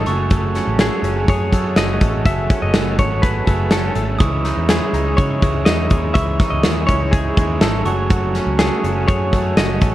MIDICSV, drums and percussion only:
0, 0, Header, 1, 2, 480
1, 0, Start_track
1, 0, Tempo, 487409
1, 305, Time_signature, 4, 2, 24, 8
1, 9797, End_track
2, 0, Start_track
2, 0, Title_t, "Drums"
2, 61, Note_on_c, 9, 42, 73
2, 159, Note_off_c, 9, 42, 0
2, 299, Note_on_c, 9, 42, 83
2, 305, Note_on_c, 9, 36, 97
2, 398, Note_off_c, 9, 42, 0
2, 403, Note_off_c, 9, 36, 0
2, 541, Note_on_c, 9, 38, 36
2, 543, Note_on_c, 9, 42, 70
2, 639, Note_off_c, 9, 38, 0
2, 641, Note_off_c, 9, 42, 0
2, 777, Note_on_c, 9, 38, 112
2, 779, Note_on_c, 9, 42, 91
2, 876, Note_off_c, 9, 38, 0
2, 877, Note_off_c, 9, 42, 0
2, 1024, Note_on_c, 9, 42, 69
2, 1122, Note_off_c, 9, 42, 0
2, 1263, Note_on_c, 9, 36, 98
2, 1266, Note_on_c, 9, 42, 79
2, 1362, Note_off_c, 9, 36, 0
2, 1365, Note_off_c, 9, 42, 0
2, 1502, Note_on_c, 9, 36, 73
2, 1505, Note_on_c, 9, 42, 82
2, 1600, Note_off_c, 9, 36, 0
2, 1604, Note_off_c, 9, 42, 0
2, 1736, Note_on_c, 9, 38, 102
2, 1740, Note_on_c, 9, 42, 80
2, 1834, Note_off_c, 9, 38, 0
2, 1839, Note_off_c, 9, 42, 0
2, 1978, Note_on_c, 9, 42, 72
2, 1982, Note_on_c, 9, 36, 92
2, 2077, Note_off_c, 9, 42, 0
2, 2080, Note_off_c, 9, 36, 0
2, 2221, Note_on_c, 9, 36, 104
2, 2222, Note_on_c, 9, 42, 84
2, 2319, Note_off_c, 9, 36, 0
2, 2321, Note_off_c, 9, 42, 0
2, 2463, Note_on_c, 9, 36, 103
2, 2464, Note_on_c, 9, 42, 75
2, 2561, Note_off_c, 9, 36, 0
2, 2563, Note_off_c, 9, 42, 0
2, 2696, Note_on_c, 9, 38, 112
2, 2697, Note_on_c, 9, 42, 85
2, 2794, Note_off_c, 9, 38, 0
2, 2795, Note_off_c, 9, 42, 0
2, 2942, Note_on_c, 9, 42, 66
2, 2943, Note_on_c, 9, 36, 78
2, 3041, Note_off_c, 9, 36, 0
2, 3041, Note_off_c, 9, 42, 0
2, 3182, Note_on_c, 9, 36, 89
2, 3185, Note_on_c, 9, 42, 80
2, 3280, Note_off_c, 9, 36, 0
2, 3283, Note_off_c, 9, 42, 0
2, 3420, Note_on_c, 9, 36, 74
2, 3422, Note_on_c, 9, 42, 70
2, 3519, Note_off_c, 9, 36, 0
2, 3521, Note_off_c, 9, 42, 0
2, 3651, Note_on_c, 9, 38, 106
2, 3655, Note_on_c, 9, 42, 86
2, 3749, Note_off_c, 9, 38, 0
2, 3754, Note_off_c, 9, 42, 0
2, 3894, Note_on_c, 9, 42, 70
2, 3992, Note_off_c, 9, 42, 0
2, 4137, Note_on_c, 9, 42, 85
2, 4139, Note_on_c, 9, 36, 95
2, 4236, Note_off_c, 9, 42, 0
2, 4237, Note_off_c, 9, 36, 0
2, 4379, Note_on_c, 9, 38, 34
2, 4381, Note_on_c, 9, 42, 75
2, 4478, Note_off_c, 9, 38, 0
2, 4480, Note_off_c, 9, 42, 0
2, 4617, Note_on_c, 9, 38, 102
2, 4618, Note_on_c, 9, 42, 96
2, 4715, Note_off_c, 9, 38, 0
2, 4716, Note_off_c, 9, 42, 0
2, 4865, Note_on_c, 9, 42, 73
2, 4964, Note_off_c, 9, 42, 0
2, 5103, Note_on_c, 9, 36, 105
2, 5105, Note_on_c, 9, 42, 76
2, 5201, Note_off_c, 9, 36, 0
2, 5204, Note_off_c, 9, 42, 0
2, 5341, Note_on_c, 9, 36, 77
2, 5347, Note_on_c, 9, 42, 65
2, 5440, Note_off_c, 9, 36, 0
2, 5445, Note_off_c, 9, 42, 0
2, 5576, Note_on_c, 9, 38, 117
2, 5580, Note_on_c, 9, 42, 76
2, 5674, Note_off_c, 9, 38, 0
2, 5679, Note_off_c, 9, 42, 0
2, 5814, Note_on_c, 9, 42, 69
2, 5819, Note_on_c, 9, 36, 82
2, 5912, Note_off_c, 9, 42, 0
2, 5918, Note_off_c, 9, 36, 0
2, 6059, Note_on_c, 9, 36, 101
2, 6061, Note_on_c, 9, 42, 86
2, 6158, Note_off_c, 9, 36, 0
2, 6160, Note_off_c, 9, 42, 0
2, 6299, Note_on_c, 9, 38, 37
2, 6300, Note_on_c, 9, 36, 96
2, 6302, Note_on_c, 9, 42, 82
2, 6398, Note_off_c, 9, 38, 0
2, 6399, Note_off_c, 9, 36, 0
2, 6400, Note_off_c, 9, 42, 0
2, 6533, Note_on_c, 9, 38, 101
2, 6535, Note_on_c, 9, 42, 89
2, 6632, Note_off_c, 9, 38, 0
2, 6633, Note_off_c, 9, 42, 0
2, 6780, Note_on_c, 9, 42, 75
2, 6782, Note_on_c, 9, 36, 68
2, 6879, Note_off_c, 9, 42, 0
2, 6880, Note_off_c, 9, 36, 0
2, 7020, Note_on_c, 9, 36, 91
2, 7020, Note_on_c, 9, 42, 83
2, 7118, Note_off_c, 9, 42, 0
2, 7119, Note_off_c, 9, 36, 0
2, 7261, Note_on_c, 9, 36, 92
2, 7264, Note_on_c, 9, 42, 76
2, 7359, Note_off_c, 9, 36, 0
2, 7362, Note_off_c, 9, 42, 0
2, 7496, Note_on_c, 9, 38, 105
2, 7500, Note_on_c, 9, 42, 70
2, 7594, Note_off_c, 9, 38, 0
2, 7599, Note_off_c, 9, 42, 0
2, 7735, Note_on_c, 9, 42, 69
2, 7834, Note_off_c, 9, 42, 0
2, 7979, Note_on_c, 9, 42, 85
2, 7981, Note_on_c, 9, 36, 91
2, 8077, Note_off_c, 9, 42, 0
2, 8079, Note_off_c, 9, 36, 0
2, 8220, Note_on_c, 9, 38, 33
2, 8222, Note_on_c, 9, 42, 78
2, 8318, Note_off_c, 9, 38, 0
2, 8321, Note_off_c, 9, 42, 0
2, 8459, Note_on_c, 9, 38, 102
2, 8460, Note_on_c, 9, 42, 92
2, 8557, Note_off_c, 9, 38, 0
2, 8558, Note_off_c, 9, 42, 0
2, 8709, Note_on_c, 9, 42, 63
2, 8808, Note_off_c, 9, 42, 0
2, 8947, Note_on_c, 9, 36, 96
2, 8951, Note_on_c, 9, 42, 72
2, 9045, Note_off_c, 9, 36, 0
2, 9049, Note_off_c, 9, 42, 0
2, 9187, Note_on_c, 9, 36, 73
2, 9191, Note_on_c, 9, 42, 70
2, 9286, Note_off_c, 9, 36, 0
2, 9289, Note_off_c, 9, 42, 0
2, 9425, Note_on_c, 9, 38, 112
2, 9430, Note_on_c, 9, 42, 90
2, 9524, Note_off_c, 9, 38, 0
2, 9528, Note_off_c, 9, 42, 0
2, 9662, Note_on_c, 9, 42, 75
2, 9668, Note_on_c, 9, 36, 82
2, 9761, Note_off_c, 9, 42, 0
2, 9766, Note_off_c, 9, 36, 0
2, 9797, End_track
0, 0, End_of_file